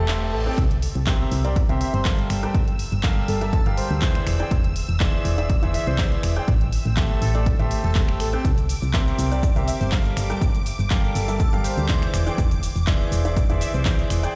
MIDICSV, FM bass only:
0, 0, Header, 1, 2, 480
1, 0, Start_track
1, 0, Tempo, 491803
1, 565, Time_signature, 4, 2, 24, 8
1, 14009, End_track
2, 0, Start_track
2, 0, Title_t, "FM bass"
2, 0, Program_c, 0, 39
2, 0, Note_on_c, 0, 28, 90
2, 323, Note_on_c, 0, 33, 84
2, 338, Note_off_c, 0, 28, 0
2, 484, Note_off_c, 0, 33, 0
2, 564, Note_on_c, 0, 36, 97
2, 859, Note_off_c, 0, 36, 0
2, 931, Note_on_c, 0, 36, 86
2, 1220, Note_off_c, 0, 36, 0
2, 1283, Note_on_c, 0, 36, 100
2, 1578, Note_off_c, 0, 36, 0
2, 1651, Note_on_c, 0, 36, 78
2, 1801, Note_off_c, 0, 36, 0
2, 1890, Note_on_c, 0, 31, 93
2, 2179, Note_off_c, 0, 31, 0
2, 2244, Note_on_c, 0, 31, 86
2, 2404, Note_off_c, 0, 31, 0
2, 2483, Note_on_c, 0, 31, 98
2, 2778, Note_off_c, 0, 31, 0
2, 2851, Note_on_c, 0, 31, 85
2, 3140, Note_off_c, 0, 31, 0
2, 3204, Note_on_c, 0, 31, 96
2, 3499, Note_off_c, 0, 31, 0
2, 3570, Note_on_c, 0, 31, 77
2, 3720, Note_off_c, 0, 31, 0
2, 3810, Note_on_c, 0, 38, 94
2, 4099, Note_off_c, 0, 38, 0
2, 4163, Note_on_c, 0, 28, 88
2, 4324, Note_off_c, 0, 28, 0
2, 4403, Note_on_c, 0, 28, 97
2, 4699, Note_off_c, 0, 28, 0
2, 4770, Note_on_c, 0, 28, 85
2, 5059, Note_off_c, 0, 28, 0
2, 5123, Note_on_c, 0, 28, 99
2, 5418, Note_off_c, 0, 28, 0
2, 5490, Note_on_c, 0, 28, 75
2, 5640, Note_off_c, 0, 28, 0
2, 5730, Note_on_c, 0, 36, 92
2, 6020, Note_off_c, 0, 36, 0
2, 6084, Note_on_c, 0, 28, 88
2, 6244, Note_off_c, 0, 28, 0
2, 6324, Note_on_c, 0, 33, 97
2, 6619, Note_off_c, 0, 33, 0
2, 6690, Note_on_c, 0, 33, 88
2, 6979, Note_off_c, 0, 33, 0
2, 7044, Note_on_c, 0, 33, 98
2, 7339, Note_off_c, 0, 33, 0
2, 7411, Note_on_c, 0, 33, 78
2, 7561, Note_off_c, 0, 33, 0
2, 7651, Note_on_c, 0, 28, 89
2, 8003, Note_on_c, 0, 33, 89
2, 8017, Note_off_c, 0, 28, 0
2, 8163, Note_off_c, 0, 33, 0
2, 8244, Note_on_c, 0, 36, 99
2, 8539, Note_off_c, 0, 36, 0
2, 8611, Note_on_c, 0, 36, 86
2, 8900, Note_off_c, 0, 36, 0
2, 8963, Note_on_c, 0, 36, 98
2, 9259, Note_off_c, 0, 36, 0
2, 9332, Note_on_c, 0, 36, 78
2, 9481, Note_off_c, 0, 36, 0
2, 9572, Note_on_c, 0, 31, 93
2, 9861, Note_off_c, 0, 31, 0
2, 9925, Note_on_c, 0, 31, 88
2, 10084, Note_off_c, 0, 31, 0
2, 10164, Note_on_c, 0, 31, 98
2, 10459, Note_off_c, 0, 31, 0
2, 10531, Note_on_c, 0, 31, 86
2, 10820, Note_off_c, 0, 31, 0
2, 10885, Note_on_c, 0, 31, 97
2, 11180, Note_off_c, 0, 31, 0
2, 11253, Note_on_c, 0, 31, 77
2, 11401, Note_off_c, 0, 31, 0
2, 11492, Note_on_c, 0, 38, 93
2, 11780, Note_off_c, 0, 38, 0
2, 11845, Note_on_c, 0, 28, 88
2, 12004, Note_off_c, 0, 28, 0
2, 12084, Note_on_c, 0, 28, 99
2, 12379, Note_off_c, 0, 28, 0
2, 12451, Note_on_c, 0, 28, 87
2, 12740, Note_off_c, 0, 28, 0
2, 12803, Note_on_c, 0, 28, 99
2, 13099, Note_off_c, 0, 28, 0
2, 13172, Note_on_c, 0, 28, 77
2, 13321, Note_off_c, 0, 28, 0
2, 13413, Note_on_c, 0, 36, 93
2, 13701, Note_off_c, 0, 36, 0
2, 13764, Note_on_c, 0, 28, 89
2, 13924, Note_off_c, 0, 28, 0
2, 14009, End_track
0, 0, End_of_file